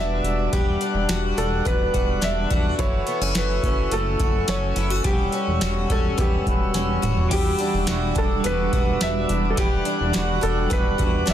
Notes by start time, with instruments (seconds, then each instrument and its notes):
Already playing: analog synth bass E1, twelve-string acoustic guitar G3 B3 D4 F#4, tonewheel organ G3 F#5 D6 E6, felt piano E5, vibraphone F#5
0.24 analog synth bass E1, closed hi-hat
0.53 analog synth bass E1, twelve-string acoustic guitar G3, felt piano G4, tonewheel organ F#6, kick, closed hi-hat
0.81 twelve-string acoustic guitar D4, closed hi-hat
0.94 analog synth bass E1
1.09 analog synth bass E1, twelve-string acoustic guitar F#4, snare, closed hi-hat
1.37 analog synth bass E1, twelve-string acoustic guitar D4, felt piano A4, closed hi-hat
1.65 analog synth bass E1, twelve-string acoustic guitar B3, felt piano B4, kick, closed hi-hat
1.94 analog synth bass E1, twelve-string acoustic guitar F#4, kick, closed hi-hat
2.21 analog synth bass E1, twelve-string acoustic guitar D4, felt piano E5, snare, closed hi-hat
2.50 analog synth bass E1, twelve-string acoustic guitar F#4, kick, closed hi-hat
2.79 analog synth bass F#1, twelve-string acoustic guitar E3, tonewheel organ A4 F#5 C#6 E6, felt piano C#5, kick, closed hi-hat
3.06 twelve-string acoustic guitar B3, vibraphone C#6, closed hi-hat
3.21 analog synth bass F#1, twelve-string acoustic guitar C#4
3.35 analog synth bass F#1, twelve-string acoustic guitar F#4, felt piano B4, snare, closed hi-hat
3.63 analog synth bass F#1, twelve-string acoustic guitar C#4, kick, closed hi-hat
3.92 analog synth bass F#1, twelve-string acoustic guitar A3, felt piano A4, closed hi-hat
4.20 analog synth bass F#1, twelve-string acoustic guitar F#4, kick, closed hi-hat
4.48 analog synth bass F#1, twelve-string acoustic guitar C#4, felt piano C#5, snare, closed hi-hat
4.76 analog synth bass F#1, twelve-string acoustic guitar E4, closed hi-hat
4.90 twelve-string acoustic guitar F#4
5.04 analog synth bass E1, tonewheel organ G3 E6, twelve-string acoustic guitar G3, felt piano G4, kick, closed hi-hat
5.32 twelve-string acoustic guitar C#4, closed hi-hat
5.47 analog synth bass E1
5.61 analog synth bass E1, twelve-string acoustic guitar F#4, snare, closed hi-hat
5.90 analog synth bass E1, twelve-string acoustic guitar C#4, felt piano A4, kick, closed hi-hat
6.18 analog synth bass E1, twelve-string acoustic guitar B3, felt piano G4, kick, closed hi-hat
6.46 analog synth bass E1, vibraphone B5, kick, closed hi-hat
6.65 vibraphone E6
6.74 analog synth bass E1, twelve-string acoustic guitar C#4, snare, closed hi-hat
7.02 analog synth bass E1, twelve-string acoustic guitar F#4, closed hi-hat, mid tom
7.17 floor tom
7.29 analog synth bass E1, clean electric guitar E3 G3 D4 E4, tonewheel organ G3 F#5 D6 E6, twelve-string acoustic guitar G3, kick, closed hi-hat, crash
7.33 felt piano G4
7.59 twelve-string acoustic guitar D4, closed hi-hat
7.74 analog synth bass E1
7.86 analog synth bass E1, clean electric guitar G3 D4, twelve-string acoustic guitar F#4, vibraphone E5, snare, closed hi-hat
7.90 clean electric guitar E4 F#4
8.15 analog synth bass E1, twelve-string acoustic guitar D4, felt piano A4, kick, closed hi-hat
8.40 clean electric guitar G3, twelve-string acoustic guitar B3
8.44 analog synth bass E1, clean electric guitar D4, felt piano B4, closed hi-hat
8.49 clean electric guitar E4 F#4
8.73 analog synth bass E1, twelve-string acoustic guitar F#4, kick, closed hi-hat
9.00 analog synth bass E1, twelve-string acoustic guitar D4, vibraphone B4, felt piano E5, snare, closed hi-hat
9.18 vibraphone D5
9.29 analog synth bass E1, vibraphone B4, closed hi-hat
9.50 felt piano A4
9.56 analog synth bass E1, clean electric guitar E3 G3 D4 E4, twelve-string acoustic guitar G3, felt piano G4, tonewheel organ F#6, kick, closed hi-hat
9.85 twelve-string acoustic guitar D4, closed hi-hat
10.01 analog synth bass E1
10.13 analog synth bass E1, clean electric guitar G3 D4 E4, twelve-string acoustic guitar F#4, snare, closed hi-hat
10.18 clean electric guitar F#4
10.41 analog synth bass E1, twelve-string acoustic guitar D4, felt piano A4, closed hi-hat
10.66 clean electric guitar G3, twelve-string acoustic guitar B3
10.71 analog synth bass E1, clean electric guitar D4 E4, felt piano B4, vibraphone E5, kick, closed hi-hat
10.78 clean electric guitar F#4
10.98 analog synth bass E1, twelve-string acoustic guitar F#4, kick, closed hi-hat
11.26 analog synth bass E1, twelve-string acoustic guitar D4, felt piano E5, snare, closed hi-hat